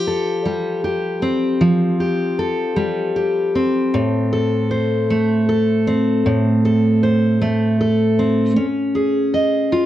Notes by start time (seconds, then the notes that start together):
Already playing: F3 G4
0.07 A4
0.45 G3
0.84 G4
1.22 C4
1.61 F3
2.00 G4
2.39 A4
2.76 G3
3.16 G4
3.55 C4
3.94 A2
4.33 A4
4.71 C5
5.10 A3
5.49 A4
5.87 C4
6.26 A2
6.65 A4
7.03 C5
7.41 A3
7.81 A4
8.19 C4
8.56 C#4
8.95 G#4
9.34 D#5
9.72 F4